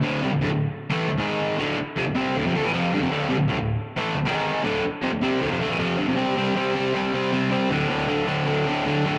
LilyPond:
\new Staff \with { instrumentName = "Overdriven electric guitar" } { \clef bass \time 4/4 \key d \minor \tempo 4 = 156 <d, a, d>8 <c g>16 <d, a,>16 <d, a,>16 <d, a,>8 r8 <a, e a>8 <d, a,>16 <gis, dis gis>4 | <d, a, d>8 r8 <f, c>16 <d, a,>16 <c g c'>8 <d, a,>16 <f, c>16 <d a>16 <a, e>16 <f, c f>8 <g, d>16 <f, c>16 | <d, a, d>8 <c g>16 <d, a,>16 <d, a,>16 <d, a,>8 r8 <a, e a>8 <d, a,>16 <gis, dis gis>4 | <d, a, d>8 r8 <f, c>16 <d, a,>16 <c g c'>8 <d, a,>16 <f, c>16 <d a>16 <a, e>16 <f, c f>8 <g, d>16 <f, c>16 |
\key c \major <c g c'>8 <c g c'>8 <c g c'>8 <c g c'>8 <c g c'>8 <c g c'>8 <c g c'>8 <c g c'>8 | <d, a, d>8 <d, a, d>8 <d, a, d>8 <d, a, d>8 <d, a, d>8 <d, a, d>8 <d, a, d>8 <d, a, d>8 | }